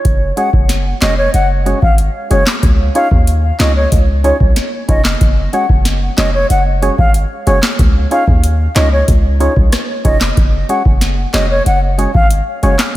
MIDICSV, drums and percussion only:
0, 0, Header, 1, 2, 480
1, 0, Start_track
1, 0, Tempo, 645161
1, 36, Time_signature, 4, 2, 24, 8
1, 9647, End_track
2, 0, Start_track
2, 0, Title_t, "Drums"
2, 37, Note_on_c, 9, 36, 125
2, 37, Note_on_c, 9, 42, 62
2, 111, Note_off_c, 9, 36, 0
2, 111, Note_off_c, 9, 42, 0
2, 276, Note_on_c, 9, 42, 58
2, 351, Note_off_c, 9, 42, 0
2, 396, Note_on_c, 9, 36, 100
2, 471, Note_off_c, 9, 36, 0
2, 515, Note_on_c, 9, 38, 67
2, 516, Note_on_c, 9, 42, 81
2, 589, Note_off_c, 9, 38, 0
2, 591, Note_off_c, 9, 42, 0
2, 756, Note_on_c, 9, 38, 123
2, 757, Note_on_c, 9, 42, 55
2, 758, Note_on_c, 9, 39, 99
2, 831, Note_off_c, 9, 38, 0
2, 832, Note_off_c, 9, 39, 0
2, 832, Note_off_c, 9, 42, 0
2, 996, Note_on_c, 9, 42, 87
2, 1071, Note_off_c, 9, 42, 0
2, 1237, Note_on_c, 9, 42, 53
2, 1312, Note_off_c, 9, 42, 0
2, 1357, Note_on_c, 9, 36, 94
2, 1431, Note_off_c, 9, 36, 0
2, 1474, Note_on_c, 9, 42, 73
2, 1549, Note_off_c, 9, 42, 0
2, 1716, Note_on_c, 9, 42, 58
2, 1791, Note_off_c, 9, 42, 0
2, 1835, Note_on_c, 9, 38, 117
2, 1836, Note_on_c, 9, 39, 94
2, 1909, Note_off_c, 9, 38, 0
2, 1911, Note_off_c, 9, 39, 0
2, 1956, Note_on_c, 9, 36, 116
2, 1956, Note_on_c, 9, 42, 61
2, 2031, Note_off_c, 9, 36, 0
2, 2031, Note_off_c, 9, 42, 0
2, 2196, Note_on_c, 9, 42, 58
2, 2270, Note_off_c, 9, 42, 0
2, 2316, Note_on_c, 9, 36, 102
2, 2390, Note_off_c, 9, 36, 0
2, 2436, Note_on_c, 9, 42, 81
2, 2510, Note_off_c, 9, 42, 0
2, 2676, Note_on_c, 9, 38, 125
2, 2677, Note_on_c, 9, 42, 54
2, 2678, Note_on_c, 9, 39, 98
2, 2751, Note_off_c, 9, 38, 0
2, 2752, Note_off_c, 9, 39, 0
2, 2752, Note_off_c, 9, 42, 0
2, 2916, Note_on_c, 9, 42, 83
2, 2917, Note_on_c, 9, 36, 96
2, 2990, Note_off_c, 9, 42, 0
2, 2991, Note_off_c, 9, 36, 0
2, 3157, Note_on_c, 9, 42, 55
2, 3232, Note_off_c, 9, 42, 0
2, 3277, Note_on_c, 9, 36, 95
2, 3351, Note_off_c, 9, 36, 0
2, 3394, Note_on_c, 9, 42, 73
2, 3396, Note_on_c, 9, 38, 77
2, 3469, Note_off_c, 9, 42, 0
2, 3471, Note_off_c, 9, 38, 0
2, 3636, Note_on_c, 9, 36, 109
2, 3636, Note_on_c, 9, 42, 58
2, 3710, Note_off_c, 9, 36, 0
2, 3710, Note_off_c, 9, 42, 0
2, 3755, Note_on_c, 9, 38, 119
2, 3756, Note_on_c, 9, 39, 93
2, 3829, Note_off_c, 9, 38, 0
2, 3831, Note_off_c, 9, 39, 0
2, 3876, Note_on_c, 9, 36, 122
2, 3876, Note_on_c, 9, 42, 64
2, 3950, Note_off_c, 9, 42, 0
2, 3951, Note_off_c, 9, 36, 0
2, 4115, Note_on_c, 9, 42, 57
2, 4190, Note_off_c, 9, 42, 0
2, 4236, Note_on_c, 9, 36, 98
2, 4310, Note_off_c, 9, 36, 0
2, 4354, Note_on_c, 9, 38, 69
2, 4356, Note_on_c, 9, 42, 81
2, 4429, Note_off_c, 9, 38, 0
2, 4430, Note_off_c, 9, 42, 0
2, 4597, Note_on_c, 9, 38, 123
2, 4598, Note_on_c, 9, 39, 98
2, 4598, Note_on_c, 9, 42, 53
2, 4671, Note_off_c, 9, 38, 0
2, 4672, Note_off_c, 9, 39, 0
2, 4672, Note_off_c, 9, 42, 0
2, 4836, Note_on_c, 9, 42, 84
2, 4911, Note_off_c, 9, 42, 0
2, 5078, Note_on_c, 9, 42, 57
2, 5152, Note_off_c, 9, 42, 0
2, 5197, Note_on_c, 9, 36, 96
2, 5271, Note_off_c, 9, 36, 0
2, 5314, Note_on_c, 9, 42, 77
2, 5389, Note_off_c, 9, 42, 0
2, 5556, Note_on_c, 9, 42, 60
2, 5631, Note_off_c, 9, 42, 0
2, 5675, Note_on_c, 9, 38, 118
2, 5676, Note_on_c, 9, 39, 90
2, 5749, Note_off_c, 9, 38, 0
2, 5750, Note_off_c, 9, 39, 0
2, 5797, Note_on_c, 9, 36, 125
2, 5797, Note_on_c, 9, 42, 59
2, 5871, Note_off_c, 9, 36, 0
2, 5871, Note_off_c, 9, 42, 0
2, 6036, Note_on_c, 9, 42, 57
2, 6110, Note_off_c, 9, 42, 0
2, 6156, Note_on_c, 9, 36, 100
2, 6230, Note_off_c, 9, 36, 0
2, 6276, Note_on_c, 9, 42, 80
2, 6350, Note_off_c, 9, 42, 0
2, 6516, Note_on_c, 9, 38, 123
2, 6517, Note_on_c, 9, 42, 53
2, 6518, Note_on_c, 9, 39, 94
2, 6591, Note_off_c, 9, 38, 0
2, 6592, Note_off_c, 9, 39, 0
2, 6592, Note_off_c, 9, 42, 0
2, 6756, Note_on_c, 9, 36, 99
2, 6756, Note_on_c, 9, 42, 84
2, 6830, Note_off_c, 9, 42, 0
2, 6831, Note_off_c, 9, 36, 0
2, 6997, Note_on_c, 9, 42, 55
2, 7072, Note_off_c, 9, 42, 0
2, 7116, Note_on_c, 9, 36, 100
2, 7191, Note_off_c, 9, 36, 0
2, 7235, Note_on_c, 9, 42, 78
2, 7237, Note_on_c, 9, 37, 106
2, 7237, Note_on_c, 9, 38, 74
2, 7309, Note_off_c, 9, 42, 0
2, 7311, Note_off_c, 9, 37, 0
2, 7311, Note_off_c, 9, 38, 0
2, 7476, Note_on_c, 9, 36, 101
2, 7476, Note_on_c, 9, 42, 59
2, 7550, Note_off_c, 9, 36, 0
2, 7550, Note_off_c, 9, 42, 0
2, 7595, Note_on_c, 9, 38, 115
2, 7596, Note_on_c, 9, 39, 91
2, 7669, Note_off_c, 9, 38, 0
2, 7671, Note_off_c, 9, 39, 0
2, 7716, Note_on_c, 9, 36, 119
2, 7716, Note_on_c, 9, 42, 61
2, 7791, Note_off_c, 9, 36, 0
2, 7791, Note_off_c, 9, 42, 0
2, 7956, Note_on_c, 9, 42, 60
2, 8030, Note_off_c, 9, 42, 0
2, 8076, Note_on_c, 9, 36, 100
2, 8150, Note_off_c, 9, 36, 0
2, 8194, Note_on_c, 9, 38, 70
2, 8195, Note_on_c, 9, 42, 82
2, 8268, Note_off_c, 9, 38, 0
2, 8270, Note_off_c, 9, 42, 0
2, 8436, Note_on_c, 9, 38, 119
2, 8437, Note_on_c, 9, 42, 55
2, 8438, Note_on_c, 9, 39, 100
2, 8511, Note_off_c, 9, 38, 0
2, 8512, Note_off_c, 9, 39, 0
2, 8512, Note_off_c, 9, 42, 0
2, 8676, Note_on_c, 9, 42, 88
2, 8751, Note_off_c, 9, 42, 0
2, 8918, Note_on_c, 9, 42, 58
2, 8993, Note_off_c, 9, 42, 0
2, 9037, Note_on_c, 9, 36, 99
2, 9111, Note_off_c, 9, 36, 0
2, 9155, Note_on_c, 9, 42, 77
2, 9229, Note_off_c, 9, 42, 0
2, 9396, Note_on_c, 9, 42, 57
2, 9470, Note_off_c, 9, 42, 0
2, 9515, Note_on_c, 9, 38, 119
2, 9516, Note_on_c, 9, 39, 95
2, 9589, Note_off_c, 9, 38, 0
2, 9591, Note_off_c, 9, 39, 0
2, 9647, End_track
0, 0, End_of_file